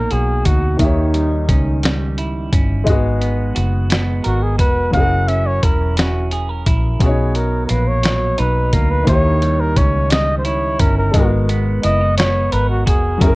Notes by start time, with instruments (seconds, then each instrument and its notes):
Already playing: clean electric guitar B2 A#3 D#4 F#4, grand piano A#3 D#4 A#4 C#5, flugelhorn A#4
0.10 fingered electric bass B1, clean electric guitar F#4, flugelhorn G#4, closed hi-hat
0.45 fingered electric bass D2, clean electric guitar D#4, flugelhorn F#4, kick, closed hi-hat
0.77 fingered electric bass D#2, grand piano D#3 A#3 E5, clean electric guitar D#3, flugelhorn D#4, kick, closed hi-hat
0.82 grand piano G4 C#5
1.14 clean electric guitar G3, closed hi-hat
1.49 fingered electric bass C#2, clean electric guitar C#4, kick, closed hi-hat
1.83 clean electric guitar G3, snare, closed hi-hat
2.18 clean electric guitar E4, closed hi-hat
2.52 fingered electric bass G1, clean electric guitar C#4, kick, closed hi-hat
2.84 fingered electric bass G#1, grand piano G#3 D#4 F#4, clean electric guitar G#3, kick, closed hi-hat
2.90 grand piano B3 G#4
3.21 clean electric guitar B3, closed hi-hat
3.55 fingered electric bass F#1, clean electric guitar F#4, closed hi-hat
3.90 clean electric guitar B3, snare, closed hi-hat
4.24 fingered electric bass G#1, flugelhorn F#4, clean electric guitar A#4, closed hi-hat
4.43 flugelhorn G#4
4.59 fingered electric bass F1, clean electric guitar F#4, flugelhorn B4, kick, closed hi-hat
4.91 fingered electric bass F#1, grand piano F#3 C#4, clean electric guitar F#3, flugelhorn F#5, kick, closed hi-hat
4.95 grand piano E4 G#4 A#4
5.28 clean electric guitar C#4, flugelhorn E5, closed hi-hat
5.46 flugelhorn C#5
5.63 fingered electric bass E1, clean electric guitar E4, flugelhorn A#4, kick, closed hi-hat
5.97 clean electric guitar C#4, flugelhorn F#4, snare, closed hi-hat
6.31 clean electric guitar G#4, closed hi-hat
6.49 clean electric guitar A#4
6.66 fingered electric bass A#1, clean electric guitar E4, kick, closed hi-hat
6.99 fingered electric bass B1, clean electric guitar B2, grand piano F#3 C#4, flugelhorn G#4, kick, closed hi-hat
7.04 grand piano F#4 C#5
7.08 grand piano D#4
7.35 clean electric guitar F#3, flugelhorn A#4, closed hi-hat
7.66 clean electric guitar A#3, flugelhorn A#4, closed hi-hat
7.70 fingered electric bass A#1, flugelhorn B4
7.88 flugelhorn C#5
8.03 clean electric guitar F#3, snare, closed hi-hat
8.38 fingered electric bass B1, clean electric guitar D#4, flugelhorn B4, closed hi-hat
8.73 fingered electric bass D2, clean electric guitar A#3, flugelhorn A#4, kick, closed hi-hat
8.91 flugelhorn B4
9.04 fingered electric bass D#2, grand piano D#3 A#3, clean electric guitar D#3, kick, closed hi-hat
9.08 grand piano E4 G4 C#5, flugelhorn C#5
9.42 clean electric guitar G3, closed hi-hat
9.60 flugelhorn A#4
9.76 fingered electric bass C#2, clean electric guitar C#4, flugelhorn C#5, kick, closed hi-hat
10.10 clean electric guitar G3, flugelhorn D#5, snare, closed hi-hat
10.39 flugelhorn C5
10.45 clean electric guitar E4, flugelhorn C#5, closed hi-hat
10.80 fingered electric bass G1, clean electric guitar C#4, flugelhorn A#4, kick, closed hi-hat
10.98 flugelhorn A#4
11.12 fingered electric bass G#1, grand piano G#3 D#4, clean electric guitar G#3, kick, closed hi-hat
11.16 grand piano B3 F#4 A#4
11.49 clean electric guitar B3, closed hi-hat
11.83 fingered electric bass F#1, clean electric guitar E4, flugelhorn D#5, closed hi-hat
12.01 clean electric guitar F#4
12.18 clean electric guitar B3, flugelhorn C#5, snare, closed hi-hat
12.52 fingered electric bass G#1, clean electric guitar A#4, flugelhorn B4, closed hi-hat
12.70 flugelhorn F#4
12.86 fingered electric bass F1, clean electric guitar F#4, flugelhorn G#4, kick, closed hi-hat
13.18 fingered electric bass F#1, grand piano F#3 C#4, clean electric guitar F#3, kick, closed hi-hat
13.22 grand piano E4 G#4, flugelhorn A#4
13.26 grand piano A#4